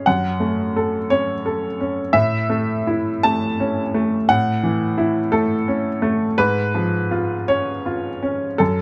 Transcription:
0.06 2.11 F#2 medium
0.06 1.10 F#5 medium
0.40 0.96 A3 soft
0.76 1.32 A4 soft
1.10 1.67 C#4 soft
1.10 2.14 C#5 medium
1.46 2.01 A4 soft
1.81 2.15 C#4 soft
2.13 4.25 A2 medium
2.13 3.24 E5 medium
2.50 3.10 A3 soft
2.87 3.46 E4 medium
3.23 3.81 A3 soft
3.23 4.29 A5 medium
3.60 4.15 C#4 soft
3.94 4.50 A3 medium
4.29 6.36 A2 medium
4.29 5.33 F#5 loud
4.63 5.19 E3 soft
4.98 5.54 E4 medium
5.32 5.89 A3 medium
5.32 6.39 A4 medium
5.68 6.25 C#4 soft
6.02 6.39 A3 medium
6.38 8.56 G#2 medium
6.38 7.49 B4 medium
6.75 7.34 F3 soft
7.11 7.71 F4 medium
7.48 8.08 C#4 soft
7.48 8.60 C#5 medium
7.86 8.45 F4 soft
8.23 8.60 C#4 medium
8.58 8.82 F#2 medium
8.58 8.82 A4 medium

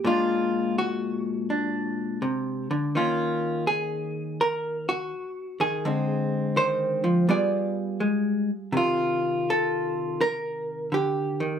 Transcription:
0.00 0.65 F3 soft
0.04 2.22 A#2 medium
0.04 2.95 G#3 soft
0.04 1.49 D4 soft
0.04 0.78 F4 medium
0.78 2.95 F#4 medium
1.50 2.92 D4 soft
2.22 2.70 C3 medium
2.71 2.95 D3 medium
2.95 5.13 D#3 medium
2.95 5.82 A#3 soft
2.95 5.83 C#4 soft
2.95 3.67 F4 medium
3.67 4.40 G#4 medium
4.41 4.88 A#4 medium
4.89 5.61 F#4 medium
5.60 5.85 D#3 medium
5.60 6.57 G#4 medium
5.85 7.27 D3 medium
5.85 7.29 G#3 soft
5.85 7.30 C4 soft
6.56 7.03 D#3 medium
6.56 7.30 C5 medium
7.04 7.29 F3 medium
7.29 8.80 G3 medium
7.29 8.00 B3 soft
7.29 8.72 F4 soft
7.29 8.72 G#4 soft
7.29 8.75 D5 medium
8.00 8.50 G#3 medium
8.72 11.60 C3 medium
8.72 11.39 D#3 soft
8.77 10.21 F4 medium
9.50 10.21 A4 medium
10.21 10.93 A#4 medium
10.92 11.40 D3 medium
10.92 11.60 G4 medium
11.40 11.60 D#3 medium

